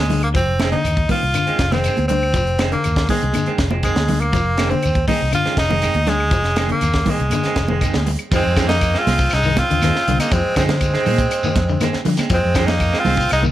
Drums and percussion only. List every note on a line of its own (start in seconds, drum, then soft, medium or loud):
0.09 open hi-hat medium
0.09 low conga medium
0.09 shekere soft
0.23 closed hi-hat soft
0.23 claves medium
0.35 kick medium
0.35 closed hi-hat medium
0.35 shekere medium
0.60 snare medium
0.60 closed hi-hat soft
0.60 high conga medium
0.60 claves medium
0.60 shekere soft
0.72 closed hi-hat soft
0.72 high conga medium
0.84 closed hi-hat medium
0.84 claves medium
0.84 shekere medium
0.97 kick medium
0.97 closed hi-hat soft
1.09 kick medium
1.09 open hi-hat medium
1.09 high conga medium
1.09 low conga medium
1.09 shekere soft
1.34 closed hi-hat medium
1.34 claves medium
1.34 shekere medium
1.47 closed hi-hat soft
1.59 kick medium
1.59 snare medium
1.59 closed hi-hat medium
1.59 shekere soft
1.72 snare soft
1.72 high conga medium
1.84 closed hi-hat medium
1.84 claves medium
1.84 shekere medium
1.97 closed hi-hat soft
1.97 high conga medium
2.09 closed hi-hat medium
2.09 low conga medium
2.09 shekere soft
2.23 claves medium
2.34 kick medium
2.34 closed hi-hat medium
2.34 shekere medium
2.47 closed hi-hat soft
2.59 snare medium
2.59 closed hi-hat medium
2.59 high conga medium
2.59 claves medium
2.59 shekere soft
2.72 closed hi-hat soft
2.84 closed hi-hat medium
2.84 claves medium
2.84 shekere medium
2.96 kick medium
2.96 snare medium
2.96 closed hi-hat soft
3.09 kick medium
3.09 open hi-hat medium
3.09 high conga medium
3.09 low conga medium
3.09 shekere soft
3.22 closed hi-hat soft
3.33 closed hi-hat medium
3.33 high conga medium
3.33 claves medium
3.33 shekere medium
3.46 closed hi-hat soft
3.58 kick medium
3.58 snare medium
3.58 closed hi-hat soft
3.58 shekere soft
3.71 high conga medium
3.83 kick medium
3.83 closed hi-hat medium
3.83 claves medium
3.83 shekere medium
3.96 snare medium
3.96 closed hi-hat soft
3.96 high conga medium
4.08 open hi-hat medium
4.08 high conga medium
4.08 low conga medium
4.13 shekere soft
4.21 closed hi-hat soft
4.21 claves medium
4.33 kick medium
4.33 snare soft
4.33 closed hi-hat medium
4.33 shekere medium
4.57 snare medium
4.57 closed hi-hat soft
4.57 high conga medium
4.57 claves medium
4.57 shekere soft
4.71 closed hi-hat soft
4.71 high conga medium
4.83 closed hi-hat medium
4.83 claves medium
4.83 shekere medium
4.95 kick medium
4.95 closed hi-hat soft
5.08 kick medium
5.08 open hi-hat medium
5.08 high conga medium
5.08 low conga medium
5.08 shekere soft
5.32 closed hi-hat medium
5.32 claves medium
5.32 shekere medium
5.45 snare soft
5.45 closed hi-hat soft
5.57 kick medium
5.57 snare medium
5.57 closed hi-hat medium
5.57 shekere soft
5.71 high conga medium
5.71 low conga medium
5.82 closed hi-hat medium
5.82 claves medium
5.82 shekere medium
5.94 closed hi-hat soft
5.94 high conga medium
6.07 snare soft
6.07 closed hi-hat medium
6.07 low conga medium
6.07 shekere soft
6.20 claves medium
6.31 kick medium
6.31 closed hi-hat medium
6.31 shekere medium
6.44 snare soft
6.44 closed hi-hat soft
6.56 snare medium
6.56 closed hi-hat medium
6.56 high conga medium
6.56 claves medium
6.56 shekere soft
6.69 closed hi-hat soft
6.69 high conga medium
6.81 closed hi-hat medium
6.81 claves medium
6.81 shekere medium
6.93 kick medium
6.93 snare medium
6.93 closed hi-hat soft
7.06 kick medium
7.06 open hi-hat medium
7.06 high conga medium
7.06 low conga medium
7.06 shekere soft
7.19 closed hi-hat soft
7.30 closed hi-hat medium
7.30 high conga medium
7.30 claves medium
7.30 shekere medium
7.43 snare soft
7.43 closed hi-hat soft
7.56 kick medium
7.56 snare medium
7.56 closed hi-hat medium
7.56 shekere soft
7.68 high conga medium
7.68 low conga medium
7.81 kick medium
7.81 closed hi-hat medium
7.81 claves medium
7.81 shekere medium
7.94 snare medium
7.94 closed hi-hat soft
7.94 high conga medium
8.06 open hi-hat medium
8.06 low conga medium
8.06 shekere soft
8.19 closed hi-hat soft
8.19 claves medium
8.32 kick medium
8.32 crash medium
8.32 shekere medium
8.57 kick medium
8.57 snare medium
8.57 closed hi-hat medium
8.57 claves medium
8.57 shekere medium
8.69 snare medium
8.69 high conga medium
8.69 shekere soft
8.81 kick medium
8.81 closed hi-hat medium
8.81 claves medium
8.81 shekere medium
8.95 snare soft
9.07 snare soft
9.07 open hi-hat medium
9.07 high conga medium
9.07 low conga medium
9.07 shekere soft
9.18 kick medium
9.18 shekere medium
9.30 snare soft
9.30 closed hi-hat medium
9.30 claves medium
9.30 shekere medium
9.43 shekere medium
9.57 kick medium
9.57 snare soft
9.57 closed hi-hat medium
9.57 high conga loud
9.69 closed hi-hat medium
9.69 shekere soft
9.81 snare soft
9.81 closed hi-hat medium
9.81 high conga medium
9.81 claves medium
9.81 shekere medium
9.96 snare soft
10.08 closed hi-hat medium
10.08 low conga medium
10.08 shekere soft
10.19 closed hi-hat medium
10.19 high conga medium
10.19 claves medium
10.19 shekere medium
10.31 kick medium
10.31 closed hi-hat medium
10.31 shekere medium
10.56 kick medium
10.56 snare medium
10.56 closed hi-hat medium
10.56 claves medium
10.56 shekere medium
10.69 snare medium
10.69 closed hi-hat medium
10.69 high conga medium
10.69 low conga medium
10.69 shekere soft
10.81 kick medium
10.81 closed hi-hat medium
10.81 claves medium
10.81 shekere medium
10.94 snare soft
11.06 open hi-hat medium
11.06 high conga medium
11.06 low conga medium
11.06 shekere soft
11.18 kick medium
11.18 closed hi-hat medium
11.18 shekere medium
11.31 closed hi-hat medium
11.31 claves medium
11.31 shekere medium
11.43 high conga medium
11.43 shekere medium
11.56 kick medium
11.56 snare soft
11.56 closed hi-hat medium
11.56 high conga medium
11.68 shekere soft
11.80 snare soft
11.80 closed hi-hat medium
11.80 high conga medium
11.80 claves medium
11.80 shekere medium
11.93 snare soft
12.05 open hi-hat medium
12.05 low conga medium
12.05 shekere soft
12.17 snare soft
12.17 closed hi-hat medium
12.17 high conga medium
12.17 claves medium
12.17 shekere medium
12.30 kick medium
12.30 closed hi-hat medium
12.30 shekere medium
12.54 kick medium
12.54 snare medium
12.54 closed hi-hat medium
12.54 claves medium
12.54 shekere medium
12.68 snare medium
12.68 high conga medium
12.68 shekere soft
12.80 kick medium
12.80 closed hi-hat medium
12.80 claves medium
12.80 shekere medium
12.94 snare soft
13.05 open hi-hat medium
13.05 high conga medium
13.05 low conga medium
13.05 shekere soft
13.17 kick medium
13.17 shekere medium
13.29 closed hi-hat medium
13.29 claves medium
13.29 shekere medium
13.43 high conga medium
13.43 shekere medium